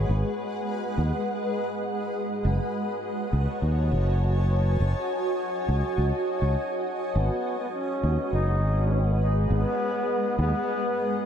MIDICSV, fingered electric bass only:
0, 0, Header, 1, 2, 480
1, 0, Start_track
1, 0, Tempo, 588235
1, 78, Time_signature, 4, 2, 24, 8
1, 9185, End_track
2, 0, Start_track
2, 0, Title_t, "Fingered electric bass"
2, 0, Program_c, 0, 33
2, 76, Note_on_c, 0, 32, 93
2, 182, Note_off_c, 0, 32, 0
2, 798, Note_on_c, 0, 39, 82
2, 903, Note_off_c, 0, 39, 0
2, 1997, Note_on_c, 0, 30, 92
2, 2103, Note_off_c, 0, 30, 0
2, 2716, Note_on_c, 0, 37, 85
2, 2822, Note_off_c, 0, 37, 0
2, 2955, Note_on_c, 0, 39, 73
2, 3196, Note_on_c, 0, 30, 91
2, 3208, Note_off_c, 0, 39, 0
2, 3893, Note_off_c, 0, 30, 0
2, 3919, Note_on_c, 0, 30, 89
2, 4024, Note_off_c, 0, 30, 0
2, 4639, Note_on_c, 0, 37, 84
2, 4744, Note_off_c, 0, 37, 0
2, 4878, Note_on_c, 0, 37, 87
2, 4984, Note_off_c, 0, 37, 0
2, 5237, Note_on_c, 0, 37, 81
2, 5343, Note_off_c, 0, 37, 0
2, 5838, Note_on_c, 0, 32, 93
2, 5944, Note_off_c, 0, 32, 0
2, 6556, Note_on_c, 0, 39, 83
2, 6662, Note_off_c, 0, 39, 0
2, 6795, Note_on_c, 0, 30, 75
2, 7038, Note_off_c, 0, 30, 0
2, 7038, Note_on_c, 0, 32, 91
2, 7735, Note_off_c, 0, 32, 0
2, 7755, Note_on_c, 0, 32, 92
2, 7862, Note_off_c, 0, 32, 0
2, 8475, Note_on_c, 0, 39, 84
2, 8582, Note_off_c, 0, 39, 0
2, 9185, End_track
0, 0, End_of_file